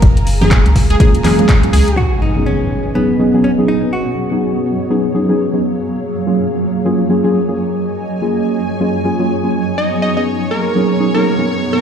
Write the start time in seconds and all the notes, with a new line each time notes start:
Already playing: G#4 A#4 F5 G#5 A#5
0.02 F#1, kick, closed hi-hat
0.17 closed hi-hat
0.27 open hi-hat
0.41 F#3 A#3 C#4 F4 G#4, muted conga, high conga, low conga
0.51 kick, clap, closed hi-hat
0.65 C#2, closed hi-hat, muted conga
0.76 kick, open hi-hat
0.90 F#1 G#4, closed hi-hat
1.00 F#3 A#3 C#4 F4 G#4, kick, closed hi-hat
1.15 closed hi-hat
1.24 F#3 A#3 C#4 F4 G#4, clap, open hi-hat, low conga
1.38 F#3 A#3 C#4 F4 G#4, closed hi-hat, high conga
1.49 kick, clap, closed hi-hat
1.63 F#3 A#3 C#4 F4 G#4, closed hi-hat
1.73 C#2 G#4, open hi-hat
1.88 closed hi-hat
1.97 B3 C#4 F#4 G#4 B4 D#5, impact
2.16 F#3 C#5
2.22 D#4
2.36 F#3 B3 C#4 D#4 G#4
2.46 C#4
2.95 F#3 B3 C#4 D#4 G#4
3.19 F#3 B3 C#4 D#4 G#4
3.34 F#3 B3 C#4 D#4 G#4
3.44 C#4
3.58 F#3 B3 C#4 D#4 G#4
3.68 D#4
3.93 F#4
4.31 F#3 B3 C#4 D#4 G#4
4.90 F#3 B3 C#4 D#4 G#4
5.14 F#3 B3 C#4 D#4 G#4
5.29 F#3 B3 C#4 D#4 G#4
5.53 F#3 B3 C#4 D#4 G#4
5.63 F#3 A#3 F5
6.26 F#3 A#3 C#4 F4 G#4
6.41 G#5
6.85 F#3 A#3 C#4 F4 G#4
7.09 F#3 A#3 C#4 F4 G#4
7.24 F#3 A#3 C#4 F4 G#4
7.48 F#3 A#3 C#4 F4 G#4
7.58 D#5
8.21 F#3 A#3 C#4 F4 G#4
8.80 F#3 A#3 C#4 F4 G#4
9.04 F#3 A#3 C#4 F4 G#4
9.19 F#3 A#3 C#4 F4 G#4
9.43 F#3 A#3 C#4 F4 G#4
9.78 B3 D#4 C#5 D#5 C#6
10.02 D#5
10.16 F#3 B3 C#4 D#4 G#4 D#5
10.51 A#4
10.75 F#3 B3 C#4 D#4 G#4
11.00 F#3 B3 C#4 D#4 G#4
11.14 F#3 B3 C#4 D#4 G#4 A#4
11.39 F#3 B3 C#4 D#4 G#4
11.73 A#4